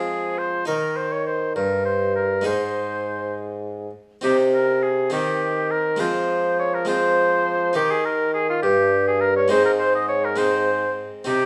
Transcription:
Already playing: F3 G#3 C4 F4 G#4
0.38 C5
0.65 D#3 D#4 A#4
0.96 C5
1.12 C#5
1.27 C5
1.56 G2 A#4
1.85 C5
2.15 A#4
2.41 G#2 G#3 D#4 G#4
2.46 G#2 C5
4.21 C3 C4 D#4 G4
4.54 A#4
4.82 G#4
5.10 D#3 C4 D#4 G4
5.71 A#4
5.96 F3 G#3 C4 F4
6.00 F3 C5
6.59 C#5
6.74 A#4
6.85 G#3 C4 F4 C5
7.73 D#3 D#4 G4
7.91 G#4
8.05 A#4
8.34 G#4
8.49 F4
8.62 G2 G4
9.07 G#4
9.21 A#4
9.37 C#5
9.48 G#2 G#3 C4 D#4 C5
9.65 A#4
9.79 C5
9.95 D#5
10.08 C#5
10.25 A#4
10.36 G#3 C4 D#4 C5
11.24 C3 C4 D#4 G4

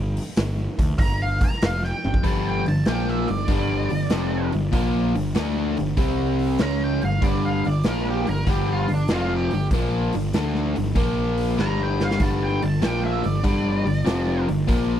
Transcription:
Already playing: G1
0.17 open hi-hat
0.36 G1, snare, open hi-hat
0.78 D2, kick, open hi-hat
0.98 G1 A#5, kick, open hi-hat
1.22 F5
1.41 A#5, kick, open hi-hat
1.52 snare
1.62 F1 F5, snare, open hi-hat
1.84 G5, snare
2.04 G1, high tom
2.14 kick
2.23 G1 G2 D3 G3 A5, kick, open hi-hat
2.48 G5
2.66 G1 G2 D3 A5, open hi-hat
2.85 A#1 A#2 F3 A#3 G5, snare, open hi-hat
3.08 E5, snare
3.28 G1 G2 D3 D5, open hi-hat
3.48 G1 G2 D3 G3, kick, open hi-hat
3.90 G1 G2 D3, open hi-hat
4.10 F1 F2 C3 F3, snare, open hi-hat
4.52 G1 G2 D3, open hi-hat
4.72 A#1 A#2 F3 A#3, kick, open hi-hat
5.15 G1 G2 D3, open hi-hat
5.35 D2 D3 A3 D4, snare, open hi-hat
5.77 G1 G2 D3, open hi-hat
5.97 C2 C3 G3 C4, kick, open hi-hat
6.39 open hi-hat
6.58 C#2 C#3 G#3 C#4 A#5, snare, open hi-hat
6.84 G5
7.02 G1 G2 D3 F5, open hi-hat
7.21 G1 G2 D3 G3 D5, kick, open hi-hat
7.45 F5
7.65 G1 G2 D3 D5, open hi-hat
7.83 A#1 A#2 F3 A#3, snare, open hi-hat
7.88 A#4
8.10 G4
8.27 G1 G2 D3 A#4, open hi-hat
8.47 G1 G2 D3 G3 G4, kick, open hi-hat
8.72 F4
8.88 G1 G2 D3, open hi-hat
8.94 D4
9.08 F1 F2 C3 F3, snare, open hi-hat
9.14 F4
9.36 G4
9.51 G1 G2 D3, open hi-hat
9.71 A#1 A#2 F3 A#3, kick, open hi-hat
10.13 G1 G2 D3, open hi-hat
10.33 D2 D3 A3 D4, snare, open hi-hat
10.55 snare
10.76 G1 G2 D3, open hi-hat
10.95 A#1 A#2 F3 A#3, kick, open hi-hat
11.38 open hi-hat
11.57 G1 G2 D3 G3, snare
11.61 A#5
11.83 G5
12.00 F5, snare
12.11 snare
12.20 G1 G2 D3 G3 A5, kick, open hi-hat
12.43 G5
12.62 G1 G2 D3 A5, open hi-hat
12.81 A#1 A#2 F3 A#3 G5, snare, open hi-hat
13.05 E5
13.23 G1 G2 D3 D5, open hi-hat
13.44 G1 G2 D3 G3, kick, open hi-hat
13.85 G1 G2 D3, open hi-hat
14.05 F1 F2 C3 F3, snare, open hi-hat
14.48 G1 G2 D3, open hi-hat
14.67 A#1 A#2 F3 A#3, kick, open hi-hat

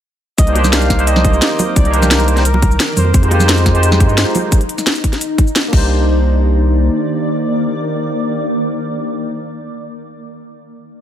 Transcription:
0.38 C2 D#3 A#4 D#5 D6, kick, closed hi-hat, cabasa
0.46 A#3 D4 D#4 G4 C5, closed hi-hat
0.52 A#3 D4 D#4, closed hi-hat, high bongo
0.57 G4 C5
0.64 snare, high conga, cabasa
0.72 F5, snare, closed hi-hat, cabasa
0.82 closed hi-hat, cabasa
0.90 kick, snare, closed hi-hat
0.97 A#3 D4 D#4 G4 C5, closed hi-hat
1.07 D#5, closed hi-hat, cabasa
1.16 snare, high conga
1.25 kick, closed hi-hat
1.30 A#3 C4 D#4, cabasa
1.35 G4 C5
1.42 snare, closed hi-hat, cabasa
1.59 open hi-hat, high bongo, high conga, cabasa
1.76 C2 D5, kick, closed hi-hat, cabasa
1.83 A#3 D4 D#4 G4 D#5, closed hi-hat
1.90 A#3 D4 D#4 A#4, closed hi-hat
1.95 G4 C5
2.02 snare, high conga, cabasa
2.11 snare, closed hi-hat, cabasa
2.20 closed hi-hat, cabasa
2.28 C5, closed hi-hat
2.35 A#3 D4 D#4 G4 C5, snare, closed hi-hat
2.45 A#4, closed hi-hat, cabasa
2.54 high bongo, high conga
2.62 kick, closed hi-hat
2.71 cabasa
2.80 snare, closed hi-hat, cabasa
2.97 F2 D#4 C5, open hi-hat, high conga, cabasa
3.05 high bongo
3.14 F2, kick, closed hi-hat, cabasa
3.21 G#3 D#4 F4 G4 C5, closed hi-hat
3.28 G#3 D#4 F4, closed hi-hat, high bongo
3.33 G4 C5
3.40 snare, high conga, cabasa
3.49 snare, closed hi-hat, cabasa
3.57 closed hi-hat, cabasa
3.66 kick, snare, closed hi-hat
3.73 G#3 D#4 F4 G4 C5, closed hi-hat
3.83 closed hi-hat, cabasa
3.91 snare, high conga
4.00 kick, closed hi-hat
4.06 G2 G#3 D#4 F4, cabasa
4.11 G4 C5
4.18 snare, closed hi-hat, cabasa
4.35 open hi-hat, high bongo, high conga, cabasa
4.52 kick, closed hi-hat, cabasa
4.61 closed hi-hat
4.69 closed hi-hat
4.78 snare, cabasa
4.87 snare, closed hi-hat, cabasa
4.96 closed hi-hat, cabasa
5.04 kick, closed hi-hat
5.13 snare, closed hi-hat
5.21 closed hi-hat, cabasa
5.38 kick, closed hi-hat
5.47 cabasa
5.56 snare, closed hi-hat, cabasa
5.68 A#3 D4
5.73 C2 D#3 A#3 D#4 G4 D5, kick, crash
5.78 C5

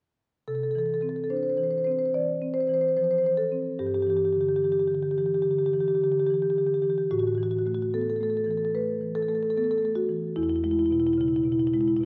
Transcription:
0.48 C3 A4
0.55 A4
0.64 A4
0.71 A4
0.76 E3 A4
0.86 A4
0.94 A4
1.01 C4 A4
1.09 A4
1.16 A4
1.24 A4
1.30 D4 C5
1.37 C5
1.43 C5
1.49 C5
1.57 E3 C5
1.63 C5
1.71 C5
1.78 C5
1.84 C4 C5
1.92 C5
1.98 C5
2.05 C5
2.14 E3 D5
2.41 C4
2.54 C5
2.60 C5
2.67 E3 C5
2.74 C5
2.81 C5
2.88 C5
2.97 F3 C5
3.04 C5
3.11 C5
3.18 C5
3.24 E3 C5
3.37 A4
3.52 C4
3.79 G2 G4
3.87 G4
3.95 G4
4.02 G4
4.07 E3 G4
4.17 G4
4.25 G4
4.33 D3 G4
4.41 G4
4.49 G4
4.56 G4
4.63 E3 G4
4.72 G4
4.79 G4
4.87 D3 G4
4.94 G4
5.03 G4
5.11 G4
5.18 E3 G4
5.26 G4
5.35 G4
5.42 D3 G4
5.51 G4
5.59 G4
5.66 G4
5.73 E3 G4
5.81 G4
5.88 G4
5.95 G4
6.02 D3 G4
6.12 G4
6.19 G4
6.26 E3 G4
6.34 G4
6.42 G4
6.50 G4
6.56 D3 G4
6.66 G4
6.74 G4
6.82 E3 G4
6.89 G4
6.98 G4
7.11 A2 F#4
7.19 F#4
7.27 F#4
7.35 E3 F#4
7.43 F#4
7.51 F#4
7.58 F#4
7.66 A3 F#4
7.74 F#4
7.82 F#4
7.93 B3 A4
8.01 A4
8.10 A4
8.16 A4
8.21 A3 A4
8.30 A4
8.37 A4
8.44 E3 A4
8.51 A4
8.57 A4
8.65 A4
8.75 A3 B4
9.01 E3
9.15 A4
9.22 A4
9.28 A3 A4
9.35 A4
9.43 A4
9.50 A4
9.56 B3 A4
9.64 A4
9.71 A4
9.78 A4
9.83 A3 A4
9.96 F#4
10.09 E3
10.36 E2 E4
10.43 E4
10.50 E4
10.56 E4
10.64 G#3 E4
10.72 E4
10.80 E4
10.86 E4
10.91 B2 E4
11.00 E4
11.07 E4
11.14 E4
11.18 C#3 E4
11.29 E4
11.37 E4
11.44 B2 E4
11.52 E4
11.60 E4
11.67 E4
11.74 G#3 E4
11.81 E4
11.88 E4
11.97 E4
12.01 B2

